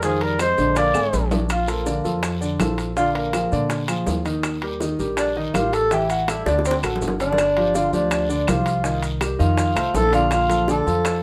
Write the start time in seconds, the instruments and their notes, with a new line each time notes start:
Already playing: upright bass F2
0.02 grand piano D#3 D#4, tenor saxophone F3, trumpet G#4, high bongo, long guiro, maracas
0.21 tenor saxophone G3, trumpet A#4, high timbale
0.39 tenor saxophone G#3, grand piano C4 C5, trumpet C5, high bongo, high timbale, low timbale, short guiro, claves, maracas
0.58 upright bass A#1, grand piano D3 D4, high bongo, short guiro, maracas
0.76 tenor saxophone A#3, trumpet D5, high bongo, high timbale, long guiro, maracas
0.94 upright bass G#1, grand piano G#3 G#4, high bongo, high timbale, claves, maracas
1.13 upright bass A#1, high bongo, low bongo, short guiro, maracas
1.31 grand piano D4 D5, high bongo, low timbale, short guiro, maracas
1.49 tenor saxophone F4, high bongo, high timbale, long guiro, claves, maracas
1.67 grand piano F3 F4 A4, tenor saxophone A#3, high timbale, maracas
1.86 grand piano D3 D4 D5, high bongo, low timbale, short guiro, maracas
2.04 upright bass F2, grand piano F3 F4 A4, high bongo, short guiro, maracas
2.23 high bongo, high timbale, long guiro, claves, maracas
2.41 grand piano D3 D4 D5, high bongo, maracas
2.59 upright bass A#1, grand piano F3 F4 A4, high bongo, low bongo, high timbale, low timbale, short guiro, claves, maracas
2.78 high bongo, high timbale, short guiro, maracas
2.96 grand piano D3 D4 D5, tenor saxophone F4, high bongo, long guiro, maracas
3.15 tenor saxophone A#3, high timbale
3.33 grand piano F3 F4 G#4, high bongo, high timbale, low timbale, short guiro, claves, maracas
3.52 upright bass A#2, grand piano D3 D4 D5, high bongo, short guiro, maracas
3.70 high bongo, high timbale, long guiro, maracas
3.88 grand piano F3 F4 G#4, high bongo, high timbale, claves, maracas
4.07 upright bass D#2, high bongo, low bongo, low timbale, short guiro, maracas
4.25 grand piano D#3 D#4 D#5, high bongo, high timbale, short guiro, maracas
4.43 high bongo, high timbale, long guiro, claves, maracas
4.62 grand piano G3 G4 A#4, high timbale
4.80 grand piano D#3 D#4 D#5, high bongo, low timbale, short guiro, maracas
4.99 upright bass A#1, grand piano G3 G4 A#4, high bongo, short guiro, maracas
5.17 tenor saxophone D4, high bongo, high timbale, long guiro, claves, maracas
5.36 grand piano D#3 D#4 D#5, tenor saxophone D#4, high bongo
5.54 upright bass A1, grand piano G3 G4 A#4, tenor saxophone F4, high bongo, low bongo, high timbale, low timbale, short guiro, claves, maracas
5.73 tenor saxophone A4, high bongo, high timbale, short guiro, maracas
5.91 grand piano E3 E4 E5, tenor saxophone G4, high bongo, long guiro, maracas
6.10 tenor saxophone F#4, high timbale, maracas
6.28 grand piano G3 G4 A4, tenor saxophone E4, high bongo, high timbale, low timbale, short guiro, claves, maracas
6.45 upright bass D2, grand piano D3 D4 D5, tenor saxophone D4, high bongo, short guiro, maracas
6.59 high bongo
6.65 tenor saxophone C4, high timbale, long guiro, maracas
6.71 high bongo
6.83 upright bass A1, grand piano F#3 F#4 A4, low bongo, high timbale, claves, maracas
6.96 low bongo
7.02 upright bass G1, low timbale, short guiro, maracas
7.08 low bongo
7.20 grand piano D3 D4 D5, tenor saxophone D4, high timbale, short guiro, maracas
7.32 low bongo
7.38 high bongo, high timbale, long guiro, claves, maracas
7.57 grand piano F3 F4 G4, high timbale
7.75 grand piano D3 D4 D5, tenor saxophone F4, high bongo, low timbale, short guiro, maracas
7.93 upright bass D2, grand piano F3 F4 G4, tenor saxophone D4, high bongo, short guiro, maracas
8.11 tenor saxophone D4, high bongo, high timbale, long guiro, claves, maracas
8.29 grand piano D3 D4 D5, high bongo, maracas
8.47 upright bass C2, grand piano F3 F4 G4, tenor saxophone F4, high bongo, low bongo, high timbale, low timbale, short guiro, claves, maracas
8.66 high bongo, high timbale, short guiro, maracas
8.84 grand piano D#3 D#4 D#5, high bongo, long guiro, maracas
9.02 high timbale, maracas
9.21 grand piano G3 G4 A#4, high bongo, high timbale, low timbale, short guiro, claves, maracas
9.39 upright bass F2, grand piano D#3 D#4 D#5, tenor saxophone F4, high bongo, short guiro, maracas
9.58 high bongo, high timbale, long guiro, maracas
9.75 upright bass C2, grand piano A3 A4 C5, high bongo, high timbale, claves, maracas
9.94 upright bass A#1, tenor saxophone A4, high bongo, low bongo, low timbale, short guiro, maracas
10.12 grand piano D3 D4 D5, tenor saxophone F4, high bongo, high timbale, short guiro, maracas
10.31 tenor saxophone F4, high bongo, high timbale, long guiro, claves, maracas
10.49 grand piano F3 F4 A4, high timbale, maracas
10.68 grand piano D3 D4 D5, tenor saxophone A4, high bongo, low timbale, short guiro, maracas
10.87 upright bass F2, grand piano F3 F4 A4, high bongo, short guiro, maracas
11.05 high bongo, high timbale, long guiro, claves, maracas